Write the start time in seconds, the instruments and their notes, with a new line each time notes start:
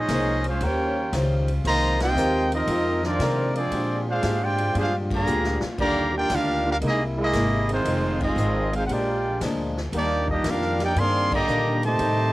Already playing: trombone section A#2 F3 G#3 A#3 C#4 D#4, trumpet section C#4 G#4 C5 D#5
0.08 upright bass C2, steel-string acoustic guitar A#3 C#4 G#4 C5, kick, snare, hi-hat pedal, ride
0.44 trombone section G#3 C#4 F4, trumpet section C#4 G#4 C5 F5, ride
0.60 upright bass D#2, trombone section C#3 G3 A#3 C#4 F4 G4, steel-string acoustic guitar D#3 C#4 G4 C5, trumpet section F4 A#4 C#5 G5, kick, ride
1.12 upright bass C#2, steel-string acoustic guitar D#3 C#4 G4 C5, kick, snare, hi-hat pedal, ride
1.48 ride
1.64 upright bass C2, trombone section C3 D#3 F3 A#3, steel-string acoustic guitar G#3 C4 F4 A#4, trumpet section F4 C5 D#5 A#5, kick, ride
2.00 trombone section C4 D#4 G4, trumpet section F4 C5 D#5 G5, snare, ride
2.15 upright bass D#2, steel-string acoustic guitar G#3 C4 F4 A#4, hi-hat pedal
2.52 trombone section F3 C4 D#4, trumpet section C4 F4 A#4 D#5, ride
2.67 upright bass F2, steel-string acoustic guitar G#3 C4 F4 A#4, kick, ride
3.03 trombone section D#3 F3 D4, trumpet section C4 F4 A#4 D5, snare
3.19 upright bass C3, steel-string acoustic guitar G#3 C4 F4 A#4, kick, snare, hi-hat pedal, ride
3.54 trombone section F3 G#3 D4, trumpet section C4 F4 G#4 D5, ride
3.71 upright bass A#2, steel-string acoustic guitar A#2 G#3 D4 G4, trombone section D3 C4 F4, kick, ride
4.07 trombone section G#3 D4 F4, trumpet section D4 G#4 C5 F5
4.23 upright bass G#2, steel-string acoustic guitar A#2 G#3 D4 G4, kick, snare, hi-hat pedal, ride
4.42 trombone section G#3 D4 G4, trumpet section F4 C5 D5 G5
4.58 ride
4.74 upright bass G2, steel-string acoustic guitar A#2 G#3 D4 G4, trombone section G#3 D4 F4, kick, ride
4.78 trumpet section D4 G#4 C5 F5
5.10 trombone section D3 F3 A#3, trumpet section G#4 D5 A#5, kick, crash
5.15 trumpet section F5
5.26 upright bass D2, steel-string acoustic guitar A#2 G#3 D4 G4, hi-hat pedal
5.44 snare
5.61 muted upright bass stroke, snare
5.78 upright bass D#2, trombone section D3 G3 A#3 D4 D#4 F4, steel-string acoustic guitar D#3 G3 D4 F4, trumpet section G4 D5 F5 A#5, kick, crash
6.14 trombone section A#3 D4 G4, trumpet section F4 G5
6.18 trumpet section A#4 D5
6.30 upright bass D2, steel-string acoustic guitar D#3 G3 D4 F4, trombone section A#3 D4 F4, trumpet section G4, kick, snare, hi-hat pedal, ride
6.34 trumpet section D4 A#4 F5
6.65 trombone section A#3 D4 F4
6.70 trumpet section D4 G4 A#4 F5
6.81 upright bass C2, trombone section C3 G#3 A#3 D#4 E4, steel-string acoustic guitar C3 G#3 A#3, kick, ride
6.86 trumpet section A#3 E4 G#4 D#5, steel-string acoustic guitar E4
7.17 trombone section G#3 A#3 E4
7.22 trumpet section A#3 E4 G#4 D#5
7.33 upright bass G#1, steel-string acoustic guitar C3 G#3 A#3 E4, kick, snare, hi-hat pedal, ride
7.69 trombone section D#3 G#3 C4, ride
7.73 trumpet section G#3 D#4 F4 C5
7.85 upright bass F1, steel-string acoustic guitar F2 D#3 G#3 C4, trombone section D#3 C4 F4, kick, ride
8.20 trombone section G#3 C4 D#4, trumpet section C4 F4 G#4 D#5, kick, crash
8.36 upright bass G#1, steel-string acoustic guitar F2 D#3 G#3 C4, hi-hat pedal
8.73 trombone section G#3 C4 F4, trumpet section D#4 G#4 C5 F5, ride
8.87 upright bass A#1, steel-string acoustic guitar A#2 F3, trombone section F3 G#3 A#3 D4 G4, trumpet section F#5, kick, ride
8.91 steel-string acoustic guitar G#3 D4, trumpet section F4 A#4 D5 G5
9.41 upright bass D2, steel-string acoustic guitar A#2 F3 G#3 D4, kick, snare, hi-hat pedal, ride
9.77 snare
9.92 upright bass D#2, steel-string acoustic guitar D#3 G3 A#3 D4, trombone section G3 A#3 D4, trumpet section D#4 G4, kick, ride
9.97 trumpet section A#3 D5
10.28 trombone section G3 A#3 D#4, trumpet section A#3 D4 G4 D#5, kick
10.44 upright bass F2, steel-string acoustic guitar D#3 G3 A#3 D4, trombone section F4, trumpet section G4 F5, kick, snare, hi-hat pedal, ride
10.48 trumpet section D4 A#4
10.61 snare
10.79 trombone section A#3 D4 G4, snare, ride
10.83 trumpet section D#4 A#4 D5 G5
10.96 upright bass G2, steel-string acoustic guitar D#3 G3 A#3, trombone section C4, trumpet section G#4 D5 F5 C6, kick, ride
11.00 steel-string acoustic guitar D4
11.32 trombone section D3 G3 A#3, trumpet section G4 D5 D#5 A#5, kick, crash
11.48 upright bass A#2, steel-string acoustic guitar D#3 G3 A#3 D4, hi-hat pedal
11.83 trombone section C3 D#3 A3, trumpet section G4 C5 D#5 A5, ride
11.99 steel-string acoustic guitar A2 G3 C4 D#4, upright bass A2, trombone section C3 A3, kick, ride